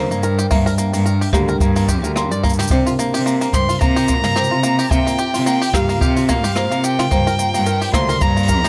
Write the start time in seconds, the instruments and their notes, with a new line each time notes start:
Already playing: cello D2, ambient pad G3 D4 A#4 G5, marimba C5
0.11 cello G2, five-string banjo A#3, cabasa
0.23 five-string banjo A#4, cabasa
0.39 five-string banjo G4, cabasa
0.51 cello G2, five-string banjo A#3, marimba E5, kick, open hi-hat, cabasa
0.66 five-string banjo A#4, open hi-hat, cabasa
0.78 five-string banjo A#3, cabasa
0.93 cello G2, five-string banjo A#3, open hi-hat, cabasa
1.06 five-string banjo A#4, cabasa
1.21 five-string banjo G4, open hi-hat, cabasa
1.33 cello D2, five-string banjo A#3, marimba G4, kick, mid tom, cabasa
1.48 five-string banjo A#4, cabasa
1.60 cello G2, five-string banjo A#3, kick, cabasa
1.76 five-string banjo A#3, open hi-hat, cabasa
1.88 five-string banjo G4, kick, cabasa
2.04 cello D2, five-string banjo A#4, cabasa
2.16 five-string banjo A#3, marimba C6, cross-stick, cabasa
2.31 cello G2, five-string banjo D5, cabasa
2.43 five-string banjo A#3, kick, cabasa
2.49 cabasa
2.53 cabasa
2.59 five-string banjo G4, mid tom, open hi-hat, cabasa
2.62 cabasa
2.68 cello C3, kick, cabasa
2.71 ambient pad C3, five-string banjo G4, marimba C5, cabasa
2.86 five-string banjo F4, open hi-hat, cabasa
2.98 five-string banjo A#3, ambient pad C4, cabasa
3.14 cello C3, five-string banjo G4, open hi-hat, cabasa
3.26 five-string banjo A#3, cabasa
3.41 five-string banjo A#3, open hi-hat, cabasa
3.53 cello G2, five-string banjo G4, marimba C5, violin C6, kick, mid tom, cabasa
3.69 five-string banjo F4, ambient pad F4, open hi-hat, cabasa
3.81 cello C3, five-string banjo A#3, violin A#5, kick, cabasa
3.96 five-string banjo G4, open hi-hat, cabasa
4.08 five-string banjo A#3, kick, cabasa
4.23 cello G2, five-string banjo A#3, mid tom, open hi-hat, cabasa
4.36 five-string banjo G4, marimba C5, cross-stick, cabasa
4.44 cabasa
4.51 cello C3, five-string banjo F4
4.63 five-string banjo A#3, cabasa
4.79 five-string banjo G4, open hi-hat, cabasa
4.91 cello C3, five-string banjo A#3, marimba E5, violin G5, kick, cabasa
5.07 five-string banjo A#3, open hi-hat, cabasa
5.19 five-string banjo G4, cabasa
5.34 cello C3, five-string banjo F4, open hi-hat, cabasa
5.46 five-string banjo A#3, violin G5, cabasa
5.62 five-string banjo G4, open hi-hat, cabasa
5.73 cello G2, five-string banjo A#3, marimba G4, violin F5, kick, cross-stick, mid tom, cabasa
5.89 five-string banjo A#3, open hi-hat, cabasa
6.01 cello C3, five-string banjo G4, violin F5, kick, cabasa
6.16 five-string banjo F4, open hi-hat, cabasa
6.28 five-string banjo A#3, violin F5, kick, cabasa
6.43 cello G2, five-string banjo G4, open hi-hat, cabasa
6.55 five-string banjo A#3, marimba C5, cross-stick, cabasa
6.71 cello C3, five-string banjo A#3, cabasa
6.84 five-string banjo G4, violin G5, cabasa
6.99 five-string banjo F4, mid tom, open hi-hat, cabasa
7.11 cello G2, ambient pad G3, five-string banjo A#3, marimba C5, kick, cabasa
7.27 five-string banjo A#4, open hi-hat, cabasa
7.39 five-string banjo A#3, cabasa
7.54 cello G2, five-string banjo A#3, ambient pad G4, open hi-hat, cabasa
7.66 five-string banjo A#4, cabasa
7.81 five-string banjo G4, open hi-hat, cabasa
7.93 cello D2, five-string banjo A#3, marimba C5, violin C6, kick, cross-stick, mid tom, cabasa
8.03 ambient pad D5
8.09 five-string banjo A#4, open hi-hat, cabasa
8.21 cello G2, five-string banjo A#3, violin A#5, kick, cabasa
8.37 five-string banjo A#3, cabasa
8.43 open hi-hat
8.48 five-string banjo A#4, kick, cabasa
8.64 cello D2, five-string banjo G4, mid tom, open hi-hat, cabasa